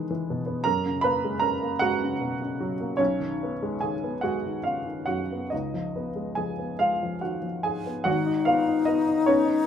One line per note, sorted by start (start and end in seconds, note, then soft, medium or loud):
0.00 0.61 E2 medium
0.00 0.68 D#3 soft
0.00 0.10 E3 soft
0.00 0.68 G#3 medium
0.00 0.46 B3 medium
0.00 0.61 G#4 medium
0.00 0.64 G#5 loud
0.10 0.40 E3 medium
0.30 0.59 B2 medium
0.46 0.65 B3 soft
0.64 2.95 F#2 medium
0.64 1.00 A#4 medium
0.64 1.02 A#5 medium
0.86 1.15 C#3 soft
1.01 1.34 A#3 soft
1.01 1.39 B4 medium
1.01 1.40 B5 medium
1.24 1.54 G#3 soft
1.40 1.72 C#3 soft
1.40 1.78 A#4 medium
1.40 1.79 A#5 medium
1.62 1.93 A#3 soft
1.79 2.13 G#3 soft
1.79 2.96 F#4 medium
1.79 2.99 F#5 medium
2.02 2.33 C#3 soft
2.21 2.40 B2 soft
2.42 2.72 C#3 soft
2.60 2.92 F#3 soft
2.80 3.00 A#3 soft
2.97 5.48 B1 medium
2.97 3.76 C#4 medium
2.97 3.79 C#5 medium
3.20 3.52 D#3 soft
3.43 3.74 B3 soft
3.63 3.94 G#3 soft
3.81 4.14 D#3 soft
3.81 4.20 G#4 medium
3.81 4.22 G#5 medium
4.03 4.36 B3 soft
4.21 4.56 G#3 soft
4.21 4.62 F#4 medium
4.21 4.64 F#5 medium
4.46 4.78 D#3 soft
4.63 4.86 C#3 soft
4.63 5.04 F4 soft
4.63 5.07 F5 medium
4.86 5.21 D#3 soft
5.06 5.43 F#2 soft
5.06 5.48 F#4 medium
5.06 5.51 F#5 medium
5.32 5.53 B3 soft
5.50 8.04 C#2 soft
5.50 6.76 D#4 soft
5.50 6.79 D#5 medium
5.74 6.08 F3 soft
5.96 6.29 B3 soft
6.16 6.50 G#3 soft
6.35 6.71 F3 soft
6.35 6.76 G#4 soft
6.35 6.78 G#5 medium
6.58 6.92 B3 soft
6.79 7.13 G#3 soft
6.79 7.19 F4 medium
6.79 7.22 F5 medium
7.03 7.36 F3 soft
7.21 7.44 D#3 soft
7.21 7.62 F#4 soft
7.21 7.65 F#5 medium
7.42 7.78 F3 soft
7.63 7.99 G#2 soft
7.63 8.04 G#4 medium
7.63 8.06 G#5 medium
7.86 8.07 B3 soft
8.04 9.67 G#1 medium
8.04 8.44 F#4 medium
8.04 8.46 F#5 medium
8.08 9.67 D#4 medium
8.26 8.59 D#4 medium
8.45 8.79 B3 soft
8.45 8.85 F4 medium
8.45 8.87 F5 medium
8.68 8.85 D#4 soft
8.85 9.20 B3 soft
8.85 9.07 D#4 medium
8.85 9.26 D#5 medium
9.08 9.40 D#4 soft
9.26 9.59 B3 soft
9.26 9.67 C#4 medium
9.26 9.67 C#5 medium
9.46 9.67 D#4 soft